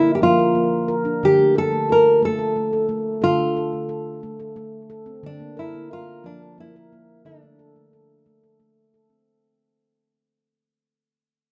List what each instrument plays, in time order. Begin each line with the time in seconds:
Already playing: nylon-string guitar E4, handpan A#4
0.15 nylon-string guitar G4
0.22 handpan F3 A#3, nylon-string guitar F4
0.39 handpan A#4
0.55 handpan A#3
0.88 handpan A#4
1.05 handpan D4
1.23 handpan D3, nylon-string guitar G4
1.39 handpan A3
1.55 handpan A4, nylon-string guitar A4
1.72 handpan A3
1.89 handpan F4, nylon-string guitar A#4
2.23 handpan A3, nylon-string guitar A4
2.39 handpan A4
2.56 handpan A3
2.73 handpan A4
2.89 handpan A3
3.22 handpan D3 A4, nylon-string guitar F4
3.39 handpan A3
3.57 handpan A4
3.73 handpan A3
3.89 handpan A4
4.23 handpan A3
4.40 handpan A4
4.56 handpan A3
4.90 handpan A4
5.06 handpan C4
5.23 handpan D3, nylon-string guitar D4
5.40 handpan A#3
5.57 nylon-string guitar E4, handpan A#4
5.74 handpan A#3
5.91 nylon-string guitar F4, handpan A#4
6.24 handpan F3 A#3, nylon-string guitar D4
6.42 handpan A#4
6.58 handpan A#3, nylon-string guitar E4
6.76 handpan A#4
6.93 handpan A#3
7.25 handpan D3 A4, nylon-string guitar D4
7.43 handpan A3
7.59 handpan A4
7.76 handpan A3
7.93 handpan A4
8.26 handpan A3
8.44 handpan A4
8.60 handpan A3
8.94 handpan A4
9.10 handpan C4